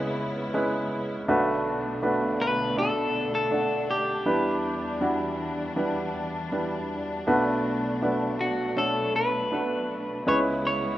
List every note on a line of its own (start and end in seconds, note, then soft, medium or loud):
0.00 1.25 C#2 soft
0.00 1.25 C#3 soft
0.00 1.26 C#3 medium
0.00 0.54 G#3 medium
0.00 1.26 G#3 soft
0.00 1.26 B3 medium
0.00 0.54 C#4 medium
0.00 0.54 E4 medium
0.00 1.26 E4 medium
0.00 0.55 B4 medium
0.54 1.25 G#3 medium
0.54 1.25 C#4 medium
0.54 1.25 E4 medium
0.54 1.25 B4 medium
1.28 4.22 B1 medium
1.28 4.22 B2 medium
1.28 4.24 B2 medium
1.28 4.23 D3 soft
1.28 1.99 A3 medium
1.28 4.24 A3 medium
1.28 1.99 D4 medium
1.28 10.23 D4 medium
1.28 1.99 F#4 medium
1.28 1.99 B4 medium
2.02 2.73 A3 medium
2.02 2.73 D4 medium
2.02 2.73 F#4 medium
2.02 2.74 B4 medium
2.42 2.78 B4 medium
2.77 3.48 A3 medium
2.77 3.48 D4 soft
2.77 3.48 F#4 soft
2.77 3.34 A4 medium
2.77 3.48 D5 medium
3.35 3.90 A4 medium
3.51 4.22 A3 medium
3.51 4.22 D4 soft
3.51 4.23 D5 medium
3.51 4.22 F#5 soft
3.91 4.98 G4 medium
4.26 7.23 E2 soft
4.26 7.24 E2 soft
4.26 7.23 E3 soft
4.26 7.24 E3 soft
4.26 4.97 G3 medium
4.26 7.24 G3 medium
4.26 4.97 D4 medium
4.26 4.97 E4 medium
4.26 4.98 B4 medium
5.01 5.73 G3 medium
5.01 5.73 D4 medium
5.01 5.73 E4 medium
5.01 5.73 F#4 medium
5.76 6.48 G3 medium
5.76 6.48 D4 medium
5.76 6.48 E4 medium
5.76 6.49 B4 medium
6.52 7.23 G3 medium
6.52 7.24 D4 medium
6.52 7.24 E4 soft
6.52 7.24 B4 medium
7.27 10.23 B1 soft
7.27 10.23 B2 medium
7.27 10.24 B2 medium
7.27 10.24 F#3 soft
7.27 7.98 A3 medium
7.27 10.24 A3 medium
7.27 7.98 D4 medium
7.27 7.98 F#4 medium
7.27 7.99 B4 medium
8.02 8.73 A3 medium
8.02 8.73 D4 medium
8.02 8.73 F#4 medium
8.02 8.73 B4 medium
8.41 8.79 F#4 medium
8.76 9.48 A3 medium
8.76 9.48 D4 soft
8.76 9.48 F#4 soft
8.76 9.12 A4 medium
8.76 9.48 C#5 medium
9.16 10.28 B4 medium
9.52 10.23 A3 medium
9.52 10.23 D4 soft
9.52 10.23 F#4 soft
9.52 10.23 B4 medium
10.26 10.98 C#2 soft
10.26 10.98 C#3 medium
10.26 10.98 C#3 soft
10.26 10.98 G#3 medium
10.26 10.98 B3 soft
10.26 10.98 C#4 medium
10.26 10.98 E4 medium
10.26 10.98 B4 medium
10.26 10.38 C#5 medium
10.67 10.98 C#5 medium